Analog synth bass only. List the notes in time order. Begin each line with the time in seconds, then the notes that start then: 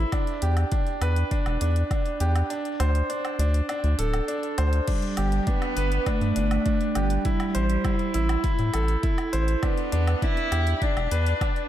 0.43 E2
1.01 E2
1.46 E1
1.61 E2
2.21 E2
2.80 D2
3.39 D2
3.84 D2
3.99 D1
4.58 D2
5.18 G1
5.77 G1
6.21 G2
6.36 G1
6.96 G1
7.55 A1
8.15 A1
8.59 A2
8.74 A1
9.34 A1
9.93 E2
10.52 E2
10.96 E1
11.11 E2